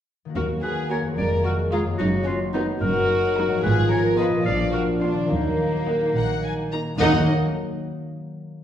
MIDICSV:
0, 0, Header, 1, 9, 480
1, 0, Start_track
1, 0, Key_signature, -6, "minor"
1, 0, Tempo, 547945
1, 316, Time_signature, 6, 3, 24, 8
1, 3671, Tempo, 555556
1, 7514, End_track
2, 0, Start_track
2, 0, Title_t, "Violin section"
2, 0, Program_c, 0, 48
2, 812, Note_on_c, 0, 82, 44
2, 986, Note_off_c, 0, 82, 0
2, 1523, Note_on_c, 0, 82, 47
2, 1699, Note_off_c, 0, 82, 0
2, 2245, Note_on_c, 0, 82, 57
2, 2422, Note_off_c, 0, 82, 0
2, 2956, Note_on_c, 0, 82, 60
2, 3133, Note_off_c, 0, 82, 0
2, 3670, Note_on_c, 0, 77, 52
2, 3849, Note_off_c, 0, 77, 0
2, 4392, Note_on_c, 0, 77, 49
2, 4571, Note_off_c, 0, 77, 0
2, 5130, Note_on_c, 0, 78, 44
2, 5307, Note_off_c, 0, 78, 0
2, 5377, Note_on_c, 0, 78, 43
2, 5598, Note_off_c, 0, 78, 0
2, 5617, Note_on_c, 0, 80, 45
2, 5686, Note_off_c, 0, 80, 0
2, 5858, Note_on_c, 0, 82, 50
2, 5927, Note_off_c, 0, 82, 0
2, 6084, Note_on_c, 0, 78, 65
2, 6354, Note_off_c, 0, 78, 0
2, 7514, End_track
3, 0, Start_track
3, 0, Title_t, "Clarinet"
3, 0, Program_c, 1, 71
3, 309, Note_on_c, 1, 70, 56
3, 420, Note_off_c, 1, 70, 0
3, 544, Note_on_c, 1, 71, 53
3, 656, Note_off_c, 1, 71, 0
3, 795, Note_on_c, 1, 73, 56
3, 904, Note_off_c, 1, 73, 0
3, 1029, Note_on_c, 1, 74, 67
3, 1139, Note_off_c, 1, 74, 0
3, 1272, Note_on_c, 1, 70, 59
3, 1381, Note_off_c, 1, 70, 0
3, 1505, Note_on_c, 1, 68, 57
3, 1616, Note_off_c, 1, 68, 0
3, 1732, Note_on_c, 1, 66, 70
3, 1979, Note_off_c, 1, 66, 0
3, 1986, Note_on_c, 1, 65, 61
3, 2097, Note_off_c, 1, 65, 0
3, 2219, Note_on_c, 1, 63, 66
3, 2332, Note_off_c, 1, 63, 0
3, 2461, Note_on_c, 1, 70, 85
3, 3170, Note_off_c, 1, 70, 0
3, 3181, Note_on_c, 1, 71, 74
3, 3291, Note_off_c, 1, 71, 0
3, 3418, Note_on_c, 1, 73, 67
3, 3529, Note_off_c, 1, 73, 0
3, 3650, Note_on_c, 1, 75, 71
3, 3895, Note_off_c, 1, 75, 0
3, 3899, Note_on_c, 1, 77, 73
3, 4009, Note_off_c, 1, 77, 0
3, 4139, Note_on_c, 1, 70, 65
3, 4250, Note_off_c, 1, 70, 0
3, 4376, Note_on_c, 1, 65, 58
3, 4488, Note_off_c, 1, 65, 0
3, 4635, Note_on_c, 1, 63, 56
3, 5829, Note_off_c, 1, 63, 0
3, 6099, Note_on_c, 1, 63, 72
3, 6296, Note_off_c, 1, 63, 0
3, 7514, End_track
4, 0, Start_track
4, 0, Title_t, "Violin section"
4, 0, Program_c, 2, 48
4, 312, Note_on_c, 2, 66, 50
4, 382, Note_off_c, 2, 66, 0
4, 550, Note_on_c, 2, 68, 47
4, 789, Note_on_c, 2, 70, 47
4, 791, Note_off_c, 2, 68, 0
4, 859, Note_off_c, 2, 70, 0
4, 1039, Note_on_c, 2, 70, 51
4, 1261, Note_on_c, 2, 66, 50
4, 1274, Note_off_c, 2, 70, 0
4, 1331, Note_off_c, 2, 66, 0
4, 1507, Note_on_c, 2, 65, 56
4, 1578, Note_off_c, 2, 65, 0
4, 1742, Note_on_c, 2, 63, 59
4, 1812, Note_off_c, 2, 63, 0
4, 1978, Note_on_c, 2, 61, 56
4, 2048, Note_off_c, 2, 61, 0
4, 2227, Note_on_c, 2, 59, 57
4, 2297, Note_off_c, 2, 59, 0
4, 2474, Note_on_c, 2, 66, 67
4, 3175, Note_on_c, 2, 68, 68
4, 3176, Note_off_c, 2, 66, 0
4, 3417, Note_off_c, 2, 68, 0
4, 3421, Note_on_c, 2, 70, 62
4, 3660, Note_on_c, 2, 71, 59
4, 3667, Note_off_c, 2, 70, 0
4, 3729, Note_off_c, 2, 71, 0
4, 3897, Note_on_c, 2, 74, 58
4, 4135, Note_on_c, 2, 66, 55
4, 4138, Note_off_c, 2, 74, 0
4, 4204, Note_off_c, 2, 66, 0
4, 4387, Note_on_c, 2, 62, 48
4, 4622, Note_on_c, 2, 58, 53
4, 4626, Note_off_c, 2, 62, 0
4, 5847, Note_off_c, 2, 58, 0
4, 6095, Note_on_c, 2, 75, 65
4, 6360, Note_off_c, 2, 75, 0
4, 7514, End_track
5, 0, Start_track
5, 0, Title_t, "Viola section"
5, 0, Program_c, 3, 48
5, 791, Note_on_c, 3, 66, 42
5, 797, Note_on_c, 3, 58, 42
5, 974, Note_off_c, 3, 66, 0
5, 977, Note_off_c, 3, 58, 0
5, 1517, Note_on_c, 3, 56, 45
5, 1519, Note_on_c, 3, 65, 41
5, 1695, Note_off_c, 3, 56, 0
5, 1697, Note_off_c, 3, 65, 0
5, 2244, Note_on_c, 3, 54, 52
5, 2244, Note_on_c, 3, 63, 55
5, 2421, Note_off_c, 3, 54, 0
5, 2422, Note_off_c, 3, 63, 0
5, 2961, Note_on_c, 3, 54, 50
5, 2961, Note_on_c, 3, 63, 52
5, 3135, Note_off_c, 3, 54, 0
5, 3135, Note_off_c, 3, 63, 0
5, 3676, Note_on_c, 3, 65, 55
5, 3678, Note_on_c, 3, 59, 47
5, 3852, Note_off_c, 3, 65, 0
5, 3853, Note_off_c, 3, 59, 0
5, 4398, Note_on_c, 3, 58, 44
5, 4398, Note_on_c, 3, 62, 45
5, 4575, Note_off_c, 3, 58, 0
5, 4575, Note_off_c, 3, 62, 0
5, 5125, Note_on_c, 3, 58, 41
5, 5126, Note_on_c, 3, 63, 44
5, 5305, Note_off_c, 3, 58, 0
5, 5305, Note_off_c, 3, 63, 0
5, 5861, Note_on_c, 3, 58, 41
5, 5861, Note_on_c, 3, 63, 39
5, 6037, Note_off_c, 3, 58, 0
5, 6037, Note_off_c, 3, 63, 0
5, 6101, Note_on_c, 3, 58, 62
5, 6106, Note_on_c, 3, 63, 63
5, 6363, Note_off_c, 3, 58, 0
5, 6366, Note_off_c, 3, 63, 0
5, 7514, End_track
6, 0, Start_track
6, 0, Title_t, "Harp"
6, 0, Program_c, 4, 46
6, 220, Note_on_c, 4, 51, 37
6, 237, Note_on_c, 4, 58, 30
6, 255, Note_on_c, 4, 66, 33
6, 262, Note_on_c, 4, 70, 32
6, 877, Note_on_c, 4, 41, 39
6, 902, Note_off_c, 4, 58, 0
6, 913, Note_on_c, 4, 58, 31
6, 956, Note_on_c, 4, 65, 34
6, 994, Note_on_c, 4, 68, 34
6, 1027, Note_off_c, 4, 66, 0
6, 1066, Note_off_c, 4, 51, 0
6, 1597, Note_on_c, 4, 42, 47
6, 1624, Note_off_c, 4, 58, 0
6, 1635, Note_on_c, 4, 58, 41
6, 1675, Note_on_c, 4, 63, 37
6, 1694, Note_off_c, 4, 41, 0
6, 1714, Note_on_c, 4, 66, 40
6, 1734, Note_off_c, 4, 65, 0
6, 1753, Note_off_c, 4, 68, 0
6, 3038, Note_on_c, 4, 44, 53
6, 3079, Note_on_c, 4, 53, 42
6, 3118, Note_on_c, 4, 59, 44
6, 3133, Note_off_c, 4, 42, 0
6, 3152, Note_off_c, 4, 58, 0
6, 3157, Note_on_c, 4, 65, 44
6, 3172, Note_off_c, 4, 63, 0
6, 3186, Note_off_c, 4, 70, 0
6, 3192, Note_off_c, 4, 66, 0
6, 3757, Note_on_c, 4, 46, 47
6, 3783, Note_off_c, 4, 53, 0
6, 3794, Note_on_c, 4, 53, 39
6, 3835, Note_on_c, 4, 58, 38
6, 3853, Note_off_c, 4, 44, 0
6, 3870, Note_on_c, 4, 62, 39
6, 3892, Note_off_c, 4, 59, 0
6, 4477, Note_on_c, 4, 51, 39
6, 4520, Note_on_c, 4, 54, 33
6, 4544, Note_off_c, 4, 58, 0
6, 4555, Note_on_c, 4, 58, 32
6, 4575, Note_off_c, 4, 46, 0
6, 4593, Note_off_c, 4, 53, 0
6, 4596, Note_on_c, 4, 63, 34
6, 4632, Note_off_c, 4, 62, 0
6, 4634, Note_off_c, 4, 65, 0
6, 6035, Note_off_c, 4, 51, 0
6, 6062, Note_on_c, 4, 51, 63
6, 6086, Note_off_c, 4, 54, 0
6, 6090, Note_on_c, 4, 54, 61
6, 6091, Note_off_c, 4, 58, 0
6, 6093, Note_off_c, 4, 63, 0
6, 6103, Note_on_c, 4, 63, 56
6, 6114, Note_on_c, 4, 58, 62
6, 6139, Note_on_c, 4, 70, 59
6, 6362, Note_off_c, 4, 51, 0
6, 6363, Note_off_c, 4, 58, 0
6, 6364, Note_off_c, 4, 54, 0
6, 6364, Note_off_c, 4, 63, 0
6, 6364, Note_off_c, 4, 70, 0
6, 7514, End_track
7, 0, Start_track
7, 0, Title_t, "French horn section"
7, 0, Program_c, 5, 60
7, 302, Note_on_c, 5, 54, 43
7, 302, Note_on_c, 5, 58, 45
7, 999, Note_off_c, 5, 54, 0
7, 1031, Note_on_c, 5, 56, 42
7, 1715, Note_off_c, 5, 58, 0
7, 1738, Note_off_c, 5, 56, 0
7, 1748, Note_on_c, 5, 54, 50
7, 1749, Note_on_c, 5, 63, 55
7, 3161, Note_off_c, 5, 63, 0
7, 3189, Note_off_c, 5, 54, 0
7, 3197, Note_on_c, 5, 53, 59
7, 3198, Note_on_c, 5, 65, 57
7, 3899, Note_off_c, 5, 65, 0
7, 3918, Note_on_c, 5, 62, 47
7, 4606, Note_off_c, 5, 53, 0
7, 4636, Note_off_c, 5, 62, 0
7, 4652, Note_on_c, 5, 63, 43
7, 4654, Note_on_c, 5, 54, 45
7, 5838, Note_off_c, 5, 63, 0
7, 5839, Note_off_c, 5, 54, 0
7, 6092, Note_on_c, 5, 54, 65
7, 6093, Note_on_c, 5, 63, 61
7, 6292, Note_off_c, 5, 54, 0
7, 6292, Note_off_c, 5, 63, 0
7, 7514, End_track
8, 0, Start_track
8, 0, Title_t, "Cello section"
8, 0, Program_c, 6, 48
8, 314, Note_on_c, 6, 39, 52
8, 897, Note_off_c, 6, 39, 0
8, 1035, Note_on_c, 6, 41, 49
8, 1611, Note_off_c, 6, 41, 0
8, 1751, Note_on_c, 6, 42, 62
8, 2334, Note_off_c, 6, 42, 0
8, 2473, Note_on_c, 6, 42, 66
8, 3049, Note_off_c, 6, 42, 0
8, 3193, Note_on_c, 6, 44, 73
8, 3768, Note_off_c, 6, 44, 0
8, 3907, Note_on_c, 6, 46, 62
8, 4487, Note_off_c, 6, 46, 0
8, 4627, Note_on_c, 6, 51, 52
8, 5217, Note_off_c, 6, 51, 0
8, 5359, Note_on_c, 6, 46, 50
8, 5949, Note_off_c, 6, 46, 0
8, 6091, Note_on_c, 6, 51, 66
8, 6358, Note_off_c, 6, 51, 0
8, 7514, End_track
9, 0, Start_track
9, 0, Title_t, "Double bass section"
9, 0, Program_c, 7, 48
9, 308, Note_on_c, 7, 39, 50
9, 894, Note_off_c, 7, 39, 0
9, 1037, Note_on_c, 7, 29, 54
9, 1612, Note_off_c, 7, 29, 0
9, 1745, Note_on_c, 7, 30, 57
9, 2331, Note_off_c, 7, 30, 0
9, 2475, Note_on_c, 7, 30, 65
9, 3050, Note_off_c, 7, 30, 0
9, 3191, Note_on_c, 7, 32, 65
9, 3767, Note_off_c, 7, 32, 0
9, 3910, Note_on_c, 7, 34, 66
9, 4489, Note_off_c, 7, 34, 0
9, 4636, Note_on_c, 7, 39, 52
9, 5222, Note_off_c, 7, 39, 0
9, 5366, Note_on_c, 7, 34, 50
9, 5952, Note_off_c, 7, 34, 0
9, 6093, Note_on_c, 7, 39, 64
9, 6359, Note_off_c, 7, 39, 0
9, 7514, End_track
0, 0, End_of_file